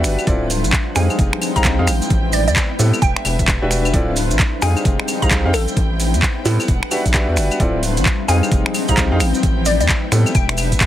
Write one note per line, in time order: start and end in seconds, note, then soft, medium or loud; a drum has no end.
0.00 0.26 G3 medium
0.00 0.26 B3 medium
0.00 0.26 D4 loud
0.00 0.26 D4 medium
0.00 0.26 F#4 medium
0.00 0.26 G4 medium
0.00 0.26 B4 medium
0.00 0.26 E5 loud
0.00 0.26 F#5 medium
0.04 0.17 G1 medium
0.04 finger snap medium
0.04 open hi-hat loud
0.04 maracas loud
0.19 closed hi-hat soft
0.19 claves medium
0.19 maracas medium
0.27 0.66 D1 loud
0.27 0.95 A3 medium
0.27 0.44 C4 medium
0.27 2.99 C4 medium
0.27 0.95 E4 medium
0.27 0.44 E4 medium
0.27 0.44 F4 medium
0.27 0.95 F4 medium
0.27 0.44 A4 medium
0.27 0.44 D5 loud
0.27 kick loud
0.27 closed hi-hat medium
0.27 maracas soft
0.50 open hi-hat loud
0.50 maracas loud
0.64 0.72 A1 medium
0.64 closed hi-hat medium
0.64 maracas medium
0.73 kick loud
0.73 clap loud
0.73 maracas soft
0.96 1.09 F2 loud
0.96 1.87 G#3 medium
0.96 1.53 D#4 medium
0.96 1.87 D#4 medium
0.96 1.53 G4 medium
0.96 1.53 G#4 medium
0.96 1.53 C5 medium
0.96 1.53 F5 medium
0.96 3.00 G5 medium
0.96 1.15 G#5 medium
0.96 finger snap medium
0.96 open hi-hat loud
0.96 maracas loud
1.10 claves medium
1.10 maracas medium
1.19 1.31 F1 loud
1.19 kick loud
1.19 closed hi-hat medium
1.19 maracas soft
1.33 finger snap medium
1.38 3.02 G5 medium
1.38 open hi-hat loud
1.38 claves medium
1.42 maracas loud
1.56 1.78 C2 medium
1.56 1.76 D#4 medium
1.56 1.76 G4 medium
1.56 1.76 G#4 medium
1.56 1.76 C5 medium
1.56 1.76 F5 medium
1.56 1.86 A#5 medium
1.56 kick medium
1.56 closed hi-hat medium
1.56 maracas medium
1.64 kick loud
1.64 clap loud
1.64 closed hi-hat medium
1.64 maracas soft
1.79 1.89 F2 medium
1.79 1.86 D#4 medium
1.79 1.86 G4 medium
1.79 1.86 G#4 medium
1.79 1.86 C5 medium
1.79 1.86 F5 loud
1.87 2.00 A1 medium
1.87 3.92 B3 medium
1.87 3.01 E4 medium
1.87 finger snap medium
1.87 open hi-hat loud
1.87 claves medium
1.87 maracas loud
2.02 closed hi-hat soft
2.02 maracas medium
2.10 2.49 A1 loud
2.10 kick loud
2.10 closed hi-hat medium
2.10 maracas soft
2.33 2.42 D5 medium
2.33 open hi-hat loud
2.33 maracas medium
2.48 2.55 E2 medium
2.48 2.53 D5 medium
2.48 closed hi-hat medium
2.48 maracas medium
2.56 kick loud
2.56 clap loud
2.56 maracas soft
2.79 2.92 A2 loud
2.79 2.96 G3 medium
2.79 2.96 B3 medium
2.79 2.96 C4 medium
2.79 2.96 E4 medium
2.79 2.96 A4 medium
2.79 open hi-hat loud
2.79 maracas loud
2.94 claves medium
2.94 maracas medium
3.02 3.15 E1 loud
3.02 3.93 G3 medium
3.02 3.93 D4 medium
3.02 3.93 E5 medium
3.02 3.67 G5 medium
3.02 kick loud
3.02 closed hi-hat medium
3.02 maracas soft
3.16 finger snap medium
3.25 3.38 E1 loud
3.25 open hi-hat loud
3.25 claves medium
3.25 maracas medium
3.39 3.59 E1 medium
3.39 kick medium
3.39 closed hi-hat medium
3.39 maracas soft
3.48 kick loud
3.48 clap loud
3.48 closed hi-hat medium
3.48 maracas soft
3.62 3.92 E1 medium
3.62 3.93 D4 loud
3.62 3.93 F#4 medium
3.62 3.93 G4 medium
3.62 3.93 B4 medium
3.62 3.93 E5 loud
3.71 finger snap soft
3.71 open hi-hat loud
3.71 maracas medium
3.85 closed hi-hat soft
3.85 claves medium
3.85 maracas medium
3.93 4.32 D1 loud
3.93 4.62 A3 medium
3.93 4.10 C4 medium
3.93 6.66 C4 medium
3.93 4.10 E4 medium
3.93 4.62 E4 medium
3.93 4.10 F4 medium
3.93 4.62 F4 medium
3.93 4.10 A4 medium
3.93 4.10 D5 loud
3.93 kick loud
3.93 closed hi-hat medium
3.93 maracas soft
4.16 open hi-hat loud
4.16 maracas loud
4.31 4.38 A1 medium
4.31 closed hi-hat medium
4.31 maracas medium
4.39 kick loud
4.39 clap loud
4.39 maracas soft
4.62 4.75 F2 loud
4.62 5.53 G#3 medium
4.62 5.19 D#4 medium
4.62 5.53 D#4 medium
4.62 5.19 G4 medium
4.62 5.19 G#4 medium
4.62 5.19 C5 medium
4.62 5.19 F5 medium
4.62 6.66 G5 loud
4.62 4.81 G#5 loud
4.62 finger snap soft
4.62 open hi-hat loud
4.62 maracas medium
4.77 claves medium
4.77 maracas medium
4.85 4.98 F1 loud
4.85 kick loud
4.85 closed hi-hat medium
4.85 maracas soft
5.00 finger snap medium
5.04 6.68 G5 medium
5.04 open hi-hat loud
5.04 claves medium
5.04 maracas loud
5.22 5.45 C2 medium
5.22 5.42 D#4 medium
5.22 5.42 G4 medium
5.22 5.42 G#4 medium
5.22 5.42 C5 medium
5.22 5.42 F5 medium
5.22 5.52 A#5 medium
5.22 kick medium
5.22 closed hi-hat medium
5.22 maracas medium
5.31 kick loud
5.31 clap loud
5.31 closed hi-hat medium
5.31 maracas soft
5.45 5.55 F2 medium
5.45 5.53 D#4 medium
5.45 5.53 G4 medium
5.45 5.53 G#4 medium
5.45 5.53 C5 medium
5.45 5.53 F5 loud
5.54 5.66 A1 medium
5.54 7.58 B3 medium
5.54 6.67 E4 medium
5.54 5.73 A4 medium
5.54 finger snap medium
5.54 open hi-hat loud
5.54 claves medium
5.54 maracas loud
5.68 closed hi-hat soft
5.68 maracas medium
5.77 6.15 A1 loud
5.77 kick loud
5.77 closed hi-hat medium
5.77 maracas soft
6.00 open hi-hat loud
6.00 maracas medium
6.14 6.21 E2 medium
6.14 closed hi-hat medium
6.14 maracas soft
6.22 kick loud
6.22 clap loud
6.22 maracas soft
6.45 6.58 A2 loud
6.45 6.62 G3 medium
6.45 6.62 B3 medium
6.45 6.62 C4 medium
6.45 6.62 E4 medium
6.45 6.74 E4 medium
6.45 6.62 A4 medium
6.45 open hi-hat loud
6.45 maracas medium
6.60 claves medium
6.60 maracas medium
6.68 6.81 E1 loud
6.68 7.59 G3 medium
6.68 7.59 D4 medium
6.68 7.59 F#5 medium
6.68 kick loud
6.68 closed hi-hat medium
6.68 maracas soft
6.83 finger snap medium
6.91 7.03 D4 medium
6.91 7.03 F#4 medium
6.91 7.03 G4 medium
6.91 7.03 B4 medium
6.91 7.03 E5 medium
6.91 open hi-hat loud
6.91 claves medium
6.91 maracas medium
7.06 7.28 B1 medium
7.06 kick medium
7.06 closed hi-hat medium
7.06 maracas medium
7.14 7.59 D4 loud
7.14 7.59 F#4 medium
7.14 7.59 G4 medium
7.14 7.59 B4 medium
7.14 7.59 E5 loud
7.14 kick loud
7.14 clap loud
7.14 closed hi-hat medium
7.14 maracas soft
7.28 7.38 E2 medium
7.37 7.50 G1 medium
7.37 finger snap soft
7.37 open hi-hat loud
7.37 maracas medium
7.51 closed hi-hat soft
7.51 claves medium
7.51 maracas soft
7.60 7.98 D1 loud
7.60 8.28 A3 medium
7.60 7.77 C4 medium
7.60 8.27 C4 medium
7.60 7.77 E4 medium
7.60 8.28 E4 medium
7.60 7.77 F4 medium
7.60 8.28 F4 medium
7.60 7.77 A4 medium
7.60 7.77 D5 loud
7.60 kick loud
7.60 closed hi-hat medium
7.60 maracas soft
7.83 open hi-hat loud
7.83 maracas medium
7.97 8.05 A1 medium
7.97 closed hi-hat medium
7.97 maracas medium
8.06 kick loud
8.06 clap loud
8.06 maracas soft
8.28 8.41 F2 loud
8.28 9.19 G#3 medium
8.28 10.33 C4 medium
8.28 8.85 D#4 medium
8.28 9.19 D#4 medium
8.28 8.85 G4 medium
8.28 8.85 G#4 medium
8.28 8.85 C5 medium
8.28 8.85 F5 medium
8.28 10.33 G5 medium
8.28 8.48 G#5 loud
8.28 open hi-hat loud
8.28 maracas medium
8.43 claves medium
8.43 maracas soft
8.52 8.64 F1 loud
8.52 kick loud
8.52 closed hi-hat medium
8.52 maracas soft
8.66 finger snap medium
8.71 10.35 G5 medium
8.71 open hi-hat loud
8.71 claves medium
8.71 maracas medium
8.88 9.11 C2 medium
8.88 9.08 D#4 medium
8.88 9.08 G4 medium
8.88 9.08 G#4 medium
8.88 9.08 C5 medium
8.88 9.08 F5 medium
8.88 9.19 A#5 medium
8.88 kick medium
8.88 closed hi-hat medium
8.88 maracas soft
8.97 kick loud
8.97 clap loud
8.97 closed hi-hat medium
8.97 maracas soft
9.12 9.22 F2 medium
9.12 9.19 D#4 medium
9.12 9.19 G4 medium
9.12 9.19 G#4 medium
9.12 9.19 C5 medium
9.12 9.19 F5 loud
9.20 9.33 A1 medium
9.20 10.34 B3 medium
9.20 10.34 E4 medium
9.20 finger snap medium
9.20 open hi-hat loud
9.20 claves medium
9.20 maracas medium
9.34 closed hi-hat soft
9.34 maracas medium
9.43 9.82 A1 loud
9.43 kick loud
9.43 closed hi-hat medium
9.43 maracas soft
9.66 9.75 D5 medium
9.66 open hi-hat loud
9.66 maracas medium
9.80 9.88 E2 medium
9.80 9.86 D5 medium
9.80 closed hi-hat medium
9.80 maracas soft
9.89 kick loud
9.89 clap loud
9.89 maracas soft
10.12 10.25 A2 loud
10.12 10.29 G3 medium
10.12 10.29 B3 medium
10.12 10.29 C4 medium
10.12 10.29 E4 medium
10.12 10.29 A4 medium
10.12 finger snap medium
10.12 open hi-hat loud
10.12 maracas medium
10.26 claves medium
10.26 maracas medium
10.35 10.74 E1 loud
10.35 10.86 G3 medium
10.35 10.86 B3 medium
10.35 10.86 D4 medium
10.35 10.86 E5 medium
10.35 10.86 G5 medium
10.35 kick loud
10.35 closed hi-hat medium
10.35 maracas soft
10.49 finger snap medium
10.49 closed hi-hat soft
10.57 open hi-hat loud
10.57 claves medium
10.57 maracas medium
10.72 10.86 A1 medium
10.72 kick medium
10.72 closed hi-hat medium
10.72 maracas medium
10.81 kick loud
10.81 clap loud
10.81 closed hi-hat medium
10.81 maracas soft